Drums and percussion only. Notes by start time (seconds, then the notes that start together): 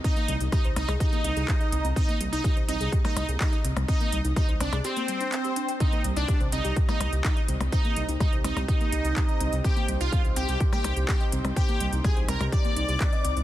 0.04 kick, closed hi-hat
0.17 closed hi-hat
0.28 closed hi-hat
0.41 closed hi-hat
0.52 kick, closed hi-hat, percussion blips
0.65 closed hi-hat
0.76 closed hi-hat, percussion blips
0.89 closed hi-hat, percussion blips
1.00 kick, closed hi-hat
1.13 closed hi-hat
1.24 closed hi-hat
1.37 closed hi-hat
1.48 kick, clap, closed hi-hat
1.61 closed hi-hat
1.72 closed hi-hat
1.85 closed hi-hat
1.96 kick, closed hi-hat
2.09 closed hi-hat
2.21 closed hi-hat
2.33 closed hi-hat
2.44 kick, closed hi-hat
2.57 closed hi-hat
2.69 closed hi-hat
2.81 closed hi-hat
2.92 kick, closed hi-hat
3.05 closed hi-hat, percussion blips
3.17 closed hi-hat, percussion blips
3.29 closed hi-hat
3.40 kick, clap, closed hi-hat
3.53 closed hi-hat
3.65 closed hi-hat
3.77 closed hi-hat, percussion blips
3.88 kick, closed hi-hat
4.01 closed hi-hat
4.13 closed hi-hat
4.25 closed hi-hat
4.36 kick, closed hi-hat, percussion blips
4.49 closed hi-hat
4.61 closed hi-hat, percussion blips
4.73 closed hi-hat, percussion blips
4.84 closed hi-hat
4.97 closed hi-hat
5.08 closed hi-hat
5.21 closed hi-hat
5.32 clap, closed hi-hat
5.44 closed hi-hat
5.56 closed hi-hat
5.68 closed hi-hat
5.80 kick, closed hi-hat
5.92 closed hi-hat
6.04 closed hi-hat
6.16 closed hi-hat
6.28 kick, closed hi-hat
6.41 closed hi-hat
6.52 closed hi-hat
6.65 closed hi-hat
6.76 kick, closed hi-hat
6.89 closed hi-hat, percussion blips
7.01 closed hi-hat, percussion blips
7.13 closed hi-hat
7.24 kick, clap, closed hi-hat
7.37 closed hi-hat
7.48 closed hi-hat
7.61 closed hi-hat, percussion blips
7.72 kick, closed hi-hat
7.85 closed hi-hat
7.96 closed hi-hat
8.09 closed hi-hat
8.20 kick, closed hi-hat, percussion blips
8.33 closed hi-hat
8.44 closed hi-hat, percussion blips
8.57 closed hi-hat, percussion blips
8.68 kick, closed hi-hat
8.81 closed hi-hat
8.92 closed hi-hat
9.05 closed hi-hat
9.16 kick, clap, closed hi-hat
9.29 closed hi-hat
9.41 closed hi-hat
9.53 closed hi-hat
9.64 kick, closed hi-hat
9.77 closed hi-hat
9.88 closed hi-hat
10.01 closed hi-hat
10.12 kick, closed hi-hat
10.25 closed hi-hat
10.36 closed hi-hat
10.49 closed hi-hat
10.60 kick, closed hi-hat
10.73 closed hi-hat, percussion blips
10.84 closed hi-hat, percussion blips
10.97 closed hi-hat
11.08 kick, clap, closed hi-hat
11.21 closed hi-hat
11.32 closed hi-hat
11.45 closed hi-hat, percussion blips
11.56 kick, closed hi-hat
11.69 closed hi-hat
11.81 closed hi-hat
11.93 closed hi-hat
12.04 kick, closed hi-hat, percussion blips
12.17 closed hi-hat
12.29 closed hi-hat, percussion blips
12.41 closed hi-hat, percussion blips
12.52 kick, closed hi-hat
12.65 closed hi-hat
12.77 closed hi-hat
12.89 closed hi-hat
13.00 kick, clap, closed hi-hat
13.13 closed hi-hat
13.25 closed hi-hat
13.37 closed hi-hat